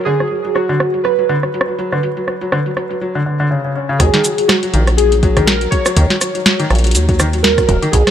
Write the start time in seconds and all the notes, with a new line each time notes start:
0.01 closed hi-hat
0.04 D3 G#4, closed hi-hat
0.06 closed hi-hat
0.20 F#3, cross-stick, closed hi-hat
0.27 F#3, closed hi-hat
0.36 closed hi-hat
0.45 F#3, closed hi-hat
0.54 F#3 F#4, cross-stick, closed hi-hat
0.69 D3, closed hi-hat
0.80 F#3, cross-stick, closed hi-hat
0.94 F#3, closed hi-hat
1.04 F#3 B4, cross-stick, closed hi-hat
1.19 F#3, closed hi-hat
1.29 D3, closed hi-hat
1.43 F#3, cross-stick, closed hi-hat
1.54 F#3, closed hi-hat
1.61 cross-stick
1.68 F#3
1.79 F#3, closed hi-hat
1.92 D3, cross-stick, closed hi-hat
2.03 F#3, closed hi-hat
2.17 F#3, closed hi-hat
2.28 F#3, cross-stick, closed hi-hat
2.41 F#3, closed hi-hat
2.52 D3, cross-stick, closed hi-hat
2.66 F#3, closed hi-hat
2.77 F#3, cross-stick, closed hi-hat
2.91 F#3, closed hi-hat
3.01 F#3
3.15 D3
3.26 D3
3.40 D3
3.51 C#3
3.64 C#3
3.75 C#4
3.89 C#3
3.99 D#2 F#3 G#4, kick, cross-stick, closed hi-hat
4.14 D#3, snare, closed hi-hat
4.24 F#3, closed hi-hat, shaker
4.38 F#3, closed hi-hat
4.48 F#3 F#4, cross-stick, snare, closed hi-hat
4.63 F#3, closed hi-hat
4.74 A#1 D#3, closed hi-hat
4.87 F#3, cross-stick, closed hi-hat
4.97 F#3 G#4, closed hi-hat
5.12 F#3, closed hi-hat
5.23 F#3, kick, closed hi-hat
5.37 D#3, kick, cross-stick, closed hi-hat
5.46 F#3 A#4, snare, closed hi-hat
5.61 F#3, closed hi-hat
5.71 F#3 C#5, kick, closed hi-hat
5.86 F#3, cross-stick, closed hi-hat, shaker
5.97 D#2 D#3, kick, closed hi-hat
6.10 F#3, snare, closed hi-hat
6.21 F#3, cross-stick, closed hi-hat, shaker
6.35 F#3, closed hi-hat
6.46 F#3, snare, closed hi-hat
6.59 D#3, closed hi-hat
6.70 A#1 F#3, cross-stick, closed hi-hat
6.75 closed hi-hat
6.79 closed hi-hat
6.84 F#3, closed hi-hat
6.87 closed hi-hat
6.91 F#3, closed hi-hat
6.95 D#2, closed hi-hat, shaker
7.09 F#3, kick, closed hi-hat
7.20 D#3, cross-stick, closed hi-hat, shaker
7.33 F#3, closed hi-hat
7.43 F#3 A#4, snare, closed hi-hat
7.58 F#3, kick, cross-stick, closed hi-hat
7.67 D#1 F#3 A#4, kick, closed hi-hat
7.82 D#3, closed hi-hat
7.92 B1 F#3 G#4, kick, closed hi-hat
8.07 F#3, cross-stick, snare, closed hi-hat